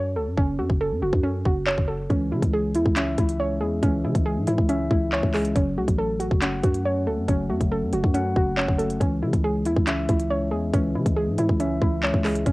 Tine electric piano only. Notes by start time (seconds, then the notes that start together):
2.10 E3
2.31 G#3
2.75 E4
2.97 E5
3.39 C#4
3.61 G#3
3.83 E3
4.04 G#3
4.48 E4
4.69 E5
5.12 C#4
5.34 G#3
5.56 F#3
5.77 A3
6.21 F#4
6.42 F#5
6.85 C#4
7.07 A3
7.28 F#3
7.50 A3
7.93 F#4
8.14 F#5
8.58 C#4
8.80 A3
9.01 E3
9.22 G#3
9.66 E4
9.87 E5
10.30 C#4
10.52 G#3
10.74 E3
10.95 G#3
11.38 E4
11.60 E5
12.03 C#4
12.25 G#3
12.46 F#3